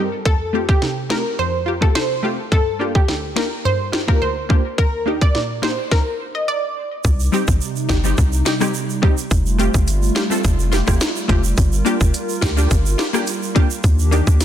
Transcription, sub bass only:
7.05 C2
7.48 A1
7.89 G1
8.18 C2
9.31 F1
9.74 G1
10.44 F1
10.88 F1
11.29 F1
11.58 G1
12.01 F1
12.42 D2
12.71 G1
13.84 D#2
14.27 D#2

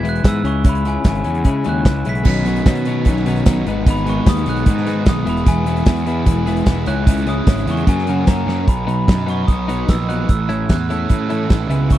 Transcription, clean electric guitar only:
0.03 E3 G#3 B3 E4
0.23 E3 G#3 B3 E4
0.44 C#3 G#3 C#4 E4
0.64 C#3 G#3 C#4 E4
0.85 C#3 G#3 C#4 E4
1.04 C#3 G#3 C#4 E4
1.24 C#3 G#3 C#4 E4
1.44 C#3 G#3 C#4 E4
1.65 C#3 G#3 C#4 E4
1.85 C#3 G#3 C#4 E4
2.05 C#3 G#3 C#4 E4
2.25 B2 D#3 F#3 C#4 D#4
2.46 B2 D#3 F#3 C#4 D#4
2.66 B2 D#3 F#3 C#4 D#4
2.85 B2 D#3 F#3 C#4 D#4
3.06 B2 D#3 F#3 C#4 D#4
3.26 B2 D#3 F#3 C#4 D#4
3.45 B2 D#3 F#3 C#4 D#4
3.66 G#2 D#3 G#3 B3 D#4
3.86 G#2 D#3 G#3 B3 D#4
4.05 G#2 D#3 G#3 B3 D#4
4.25 G#2 D#3 G#3 B3 D#4
4.46 G#2 D#3 G#3 B3 D#4
4.65 G#2 D#3 G#3 B3 D#4
4.85 G#2 D#3 G#3 B3 D#4
5.05 G#2 D#3 G#3 B3 D#4
5.25 E3 G#3 B3 E4
5.46 E3 G#3 B3 E4
5.66 E3 G#3 B3 E4
5.86 E3 G#3 B3 E4
6.06 E3 G#3 B3 E4
6.25 E3 G#3 B3 E4
6.46 E3 G#3 B3 E4
6.66 E3 G#3 B3 E4
6.87 C#3 G#3 C#4 E4
7.06 C#3 G#3 C#4 E4
7.26 C#3 G#3 C#4 E4
7.47 C#3 G#3 C#4 E4
7.67 C#3 G#3 C#4 E4
7.86 F#2 C#3 F#3 A#3 C#4
8.07 F#2 C#3 F#3 A#3 C#4
8.27 F#2 C#3 F#3 A#3 C#4
8.47 F#2 C#3 F#3 A#3 C#4
8.87 B2 F#3 B3 D#4
9.26 B2 F#3 B3 D#4
9.68 B2 F#3 B3 D#4
10.09 B2 F#3 B3 D#4
10.49 E3 A3 C#4 E4
10.90 E3 A3 C#4 E4
11.30 E3 A3 C#4 E4
11.70 C#3 G#3 B3 E4

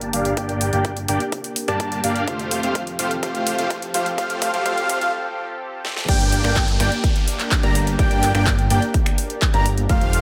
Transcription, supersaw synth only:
Already playing: A#3 D4 G4 D5 A5
0.13 A#3 D4 G4 D5 F5
0.37 A#3 D4 G4 D5 G5
0.73 A#3 D4 G4 D5 G5
1.08 A#3 D4 G4 D5 G5
1.68 A#3 D4 G4 D5 A5
2.04 A#3 D4 G4 D5 F5
2.28 A3 F4 G4 C5 F5
2.63 A3 F4 G4 C5 F5
2.99 A3 F4 G4 C5 F5
3.23 A3 F4 G4 C5 F5
3.58 A3 F4 G4 C5 F5
3.94 A3 F4 G4 C5 F5
4.18 A3 F4 G4 C5 F5
4.54 A3 F4 G4 C5 F5
4.66 A3 F4 G4 C5 F5
5.01 A3 F4 G4 C5 F5
6.09 A#3 D4 G4 D5 G5
6.44 A#3 D4 G4 D5 G5
6.80 A#3 D4 G4 D5 G5
7.63 A#3 D4 G4 D5 A#5
7.99 A#3 D4 G4 D5 G5
8.35 A#3 D4 G4 D5 G5
8.70 A#3 D4 G4 D5 G5
9.54 A#3 D4 G4 D5 A#5
9.90 A3 F4 G4 C5 F5

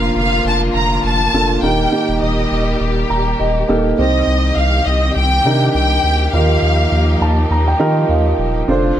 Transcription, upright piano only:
Already playing: A#3 D4 F4 A#4
1.34 A#3 D4 F4 A4
1.63 D#3 A#3 D#4 G4 A#4
1.92 A#3 D#4 G4 A#4
3.10 A#5
3.39 D#5
3.68 A#3 D#4 G4 A4
3.98 C3 C4 D#4 G4 C5
5.46 D4 D#4 G4 A#4
6.34 D#3 D#4 F4 G4 A#4
7.22 A5
7.51 A#5
7.68 G5
7.79 D#4 F4 G4 A#4
8.10 F5
8.27 D#5
8.68 D4 F4 A4 C5

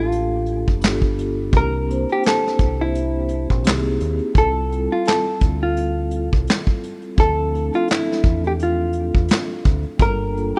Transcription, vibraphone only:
Already playing: A#3 D4 F4 G4 A4
0.80 B3 D4 F4 G4
0.84 A4
1.52 A#3 C4 D4 E4 G4
1.87 A#3 C4 D4 E4 C5
3.62 A#3 C4 D#4 E4
3.67 G4
3.73 G#4
4.34 G3 C4 E4 F4
4.69 G3 C4 E4 F4 A4
7.16 F3 C4 D4 E4 A4
7.52 A3 C4 D4 E4 A4
9.98 G3 A#3 D4 F4
10.02 A4
10.33 G3 A#3 D4 F4
10.38 A4

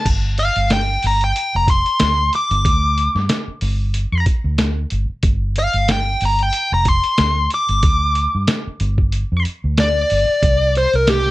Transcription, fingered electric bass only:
0.06 G1
0.56 G1
1.04 G1
1.55 F1
2.02 D2
2.51 G1
2.65 D2
3.15 G2
3.48 muted fingered electric bass stroke
3.62 G1
4.12 F2
4.26 muted fingered electric bass stroke
4.44 D2
4.92 G1
5.09 muted fingered electric bass stroke
5.23 G1
5.74 G1
6.22 G1
6.72 F1
7.19 D2
7.69 G1
7.83 D2
8.35 G2
8.67 muted fingered electric bass stroke
8.81 G1
9.32 F2
9.46 muted fingered electric bass stroke
9.64 D2
10.11 G1
10.29 muted fingered electric bass stroke
10.43 C2
10.94 C2

